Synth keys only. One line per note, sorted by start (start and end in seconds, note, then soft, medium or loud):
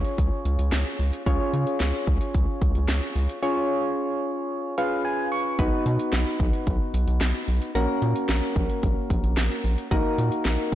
0.00 1.22 C#4 medium
0.00 1.22 F4 medium
0.00 1.22 G#4 medium
0.00 1.22 C#5 medium
1.26 3.39 C#4 medium
1.26 3.39 F4 medium
1.26 3.39 G#4 medium
1.26 3.39 C#5 medium
3.43 4.75 C#4 medium
3.43 4.75 F4 medium
3.43 4.75 G#4 medium
3.43 4.75 C#5 medium
4.78 5.59 C#4 medium
4.78 5.59 F4 medium
4.78 5.59 G#4 medium
4.78 5.58 B4 medium
4.78 5.03 F5 medium
5.05 5.30 G#5 medium
5.32 5.57 C#6 medium
5.59 7.71 B3 medium
5.59 7.71 D#4 medium
5.59 7.71 F#4 medium
5.59 7.71 B4 medium
7.75 9.87 A#3 medium
7.75 9.87 C#4 medium
7.75 9.87 F#4 medium
7.75 9.87 A#4 medium
9.91 10.75 A#3 medium
9.91 10.75 D#4 medium
9.91 10.75 F#4 medium
9.91 10.75 A#4 medium